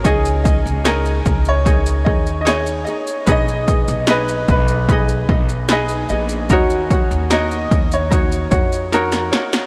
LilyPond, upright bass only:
\new Staff \with { instrumentName = "Upright bass" } { \clef bass \time 4/4 \key gis \dorian \tempo 4 = 74 cis,8. cis,8. cis,4 dis,4 r8 | b,,8. b,,8. b,,4 b,,4 ais,,8 | dis,8. dis,8. dis,4 eis,4 r8 | }